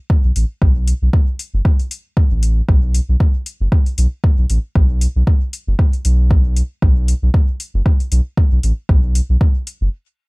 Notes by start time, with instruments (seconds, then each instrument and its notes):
0.10 kick
0.24 sub bass B1
0.36 sub bass A1, open hi-hat
0.62 sub bass B1, kick
0.88 open hi-hat
1.02 sub bass B1
1.13 kick
1.39 open hi-hat
1.54 sub bass F#1
1.65 kick
1.80 open hi-hat
1.91 open hi-hat
2.17 kick
2.31 sub bass A1
2.43 open hi-hat
2.69 sub bass B1, kick
2.94 open hi-hat
3.09 sub bass B1
3.20 kick
3.46 open hi-hat
3.60 sub bass F#1
3.72 kick
3.86 open hi-hat
3.98 sub bass B1, open hi-hat
4.24 kick
4.38 sub bass B1
4.50 sub bass A1, open hi-hat
4.75 sub bass B1, kick
5.01 open hi-hat
5.16 sub bass B1
5.27 kick
5.53 open hi-hat
5.67 sub bass F#1
5.79 kick
5.93 open hi-hat
6.05 sub bass B1, open hi-hat
6.31 kick
6.56 open hi-hat
6.82 sub bass B1, kick
7.08 open hi-hat
7.22 sub bass B1
7.34 kick
7.60 open hi-hat
7.74 sub bass F#1
7.86 kick
8.00 open hi-hat
8.12 sub bass B1, open hi-hat
8.37 kick
8.52 sub bass B1
8.63 sub bass A1, open hi-hat
8.89 sub bass B1, kick
9.15 open hi-hat
9.29 sub bass B1
9.41 kick
9.67 open hi-hat
9.81 sub bass F#1